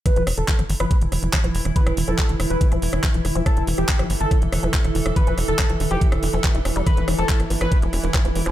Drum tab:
HH |xxoxxxoxxxoxxxox|xxoxxxoxxxoxxxox|xxoxxxoxxxoxxxox|xxoxxxoxxxoxxxox|
CP |----x-------x---|----x-------x---|----x-------x---|----x-------x---|
SD |r-r--r-r--r-r--r|-r--r-r--r-r--r-|r--r-r--r-r--r-r|--r-r--r-r--r-r-|
BD |o---o---o---o---|o---o---o---o---|o---o---o---o---|o---o---o---o---|

HH |xxoxxxoxxxoxxxo-|
CP |----x-------x---|
SD |r-r--r-r--r-r--r|
BD |o---o---o---o---|